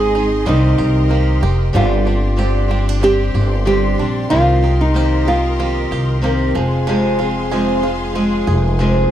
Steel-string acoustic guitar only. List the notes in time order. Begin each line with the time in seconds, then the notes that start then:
Already playing: G#3 C4 D#4 G#4
0.15 G#3 C4 D#4 G#4
0.46 C3 D#3 A#3 C4 G4
1.08 D#3 A#3 C4 G4
1.41 A#3 C4 G4
1.73 G2 D3 G3 C4 D4 G4
2.04 G3 C4 D4 G4
2.36 G2 D3 G3 C4 D4 G4
2.68 G3 C4 D4 G4
3.00 G3 C4 D4 G4
3.65 G2 D3 G3 C4 D4 G4
3.98 G3 C4 D4 G4
4.30 C3 D#3 A#3 C4 G4
4.62 A#3 C4 G4
4.94 C3 D#3 A#3 C4 G4
5.25 A#3 C4 G4
5.57 D#3 A#3 C4 G4
6.22 C3 D#3 A#3 C4 G4
6.55 F3 G#3 C4 G#4
6.87 F2 C3 F3 G#3 C4 G#4
7.19 F3 G#3 C4 G#4
7.51 F2 C3 F3 G#3 C4 G#4
7.82 F3 G#3 C4 G#4
8.14 F3 G#3 C4 G#4
8.80 F2 C3 F3 G#3 C4 G#4